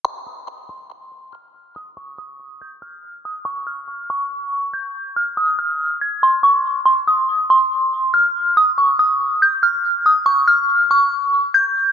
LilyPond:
\new Staff \with { instrumentName = "Synth bell" } { \time 4/4 \key c \phrygian \tempo 4 = 141 c'''8 ees'''4 c'''4. f'''4 | ees'''8 des'''8 ees'''4 g'''8 f'''4 ees'''8 | des'''8 f'''4 des'''4. g'''4 | f'''8 ees'''8 f'''4 aes'''8 c'''8 des'''8 r8 |
c'''8 ees'''4 c'''4. f'''4 | ees'''8 des'''8 ees'''4 g'''8 f'''4 ees'''8 | des'''8 f'''4 des'''4. g'''4 | }